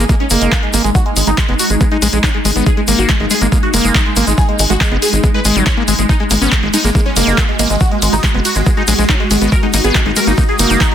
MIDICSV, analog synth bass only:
0, 0, Header, 1, 2, 480
1, 0, Start_track
1, 0, Key_signature, 5, "minor"
1, 0, Tempo, 428571
1, 1064, Time_signature, 4, 2, 24, 8
1, 12262, End_track
2, 0, Start_track
2, 0, Title_t, "Analog synth bass"
2, 0, Program_c, 0, 38
2, 345, Note_on_c, 0, 30, 100
2, 420, Note_off_c, 0, 30, 0
2, 465, Note_on_c, 0, 30, 83
2, 540, Note_off_c, 0, 30, 0
2, 825, Note_on_c, 0, 32, 97
2, 900, Note_off_c, 0, 32, 0
2, 945, Note_on_c, 0, 32, 86
2, 1020, Note_off_c, 0, 32, 0
2, 1305, Note_on_c, 0, 32, 95
2, 1380, Note_off_c, 0, 32, 0
2, 1425, Note_on_c, 0, 32, 80
2, 1500, Note_off_c, 0, 32, 0
2, 1665, Note_on_c, 0, 30, 78
2, 1740, Note_off_c, 0, 30, 0
2, 1905, Note_on_c, 0, 32, 86
2, 1980, Note_off_c, 0, 32, 0
2, 2265, Note_on_c, 0, 34, 104
2, 2340, Note_off_c, 0, 34, 0
2, 2385, Note_on_c, 0, 34, 85
2, 2460, Note_off_c, 0, 34, 0
2, 2744, Note_on_c, 0, 32, 103
2, 2820, Note_off_c, 0, 32, 0
2, 2864, Note_on_c, 0, 32, 87
2, 2940, Note_off_c, 0, 32, 0
2, 3224, Note_on_c, 0, 32, 92
2, 3300, Note_off_c, 0, 32, 0
2, 3344, Note_on_c, 0, 32, 80
2, 3420, Note_off_c, 0, 32, 0
2, 3585, Note_on_c, 0, 32, 78
2, 3660, Note_off_c, 0, 32, 0
2, 3824, Note_on_c, 0, 32, 83
2, 3900, Note_off_c, 0, 32, 0
2, 4185, Note_on_c, 0, 30, 103
2, 4260, Note_off_c, 0, 30, 0
2, 4305, Note_on_c, 0, 30, 83
2, 4380, Note_off_c, 0, 30, 0
2, 4664, Note_on_c, 0, 32, 92
2, 4740, Note_off_c, 0, 32, 0
2, 4785, Note_on_c, 0, 32, 88
2, 4860, Note_off_c, 0, 32, 0
2, 5145, Note_on_c, 0, 32, 93
2, 5220, Note_off_c, 0, 32, 0
2, 5265, Note_on_c, 0, 32, 85
2, 5340, Note_off_c, 0, 32, 0
2, 5505, Note_on_c, 0, 30, 81
2, 5580, Note_off_c, 0, 30, 0
2, 5745, Note_on_c, 0, 32, 85
2, 5820, Note_off_c, 0, 32, 0
2, 6105, Note_on_c, 0, 32, 100
2, 6180, Note_off_c, 0, 32, 0
2, 6225, Note_on_c, 0, 32, 83
2, 6300, Note_off_c, 0, 32, 0
2, 6584, Note_on_c, 0, 32, 92
2, 6660, Note_off_c, 0, 32, 0
2, 6704, Note_on_c, 0, 32, 83
2, 6780, Note_off_c, 0, 32, 0
2, 7065, Note_on_c, 0, 32, 97
2, 7140, Note_off_c, 0, 32, 0
2, 7184, Note_on_c, 0, 32, 82
2, 7260, Note_off_c, 0, 32, 0
2, 7424, Note_on_c, 0, 32, 80
2, 7500, Note_off_c, 0, 32, 0
2, 7665, Note_on_c, 0, 32, 81
2, 7740, Note_off_c, 0, 32, 0
2, 8025, Note_on_c, 0, 30, 104
2, 8100, Note_off_c, 0, 30, 0
2, 8144, Note_on_c, 0, 30, 83
2, 8220, Note_off_c, 0, 30, 0
2, 8505, Note_on_c, 0, 32, 100
2, 8580, Note_off_c, 0, 32, 0
2, 8624, Note_on_c, 0, 32, 89
2, 8700, Note_off_c, 0, 32, 0
2, 8985, Note_on_c, 0, 32, 92
2, 9060, Note_off_c, 0, 32, 0
2, 9105, Note_on_c, 0, 32, 88
2, 9180, Note_off_c, 0, 32, 0
2, 9345, Note_on_c, 0, 30, 81
2, 9420, Note_off_c, 0, 30, 0
2, 9585, Note_on_c, 0, 32, 85
2, 9660, Note_off_c, 0, 32, 0
2, 9944, Note_on_c, 0, 34, 98
2, 10020, Note_off_c, 0, 34, 0
2, 10065, Note_on_c, 0, 34, 83
2, 10140, Note_off_c, 0, 34, 0
2, 10424, Note_on_c, 0, 32, 96
2, 10500, Note_off_c, 0, 32, 0
2, 10544, Note_on_c, 0, 32, 90
2, 10620, Note_off_c, 0, 32, 0
2, 10905, Note_on_c, 0, 32, 95
2, 10980, Note_off_c, 0, 32, 0
2, 11025, Note_on_c, 0, 32, 86
2, 11100, Note_off_c, 0, 32, 0
2, 11264, Note_on_c, 0, 32, 78
2, 11340, Note_off_c, 0, 32, 0
2, 11504, Note_on_c, 0, 32, 79
2, 11580, Note_off_c, 0, 32, 0
2, 11864, Note_on_c, 0, 30, 99
2, 11940, Note_off_c, 0, 30, 0
2, 11984, Note_on_c, 0, 30, 80
2, 12060, Note_off_c, 0, 30, 0
2, 12262, End_track
0, 0, End_of_file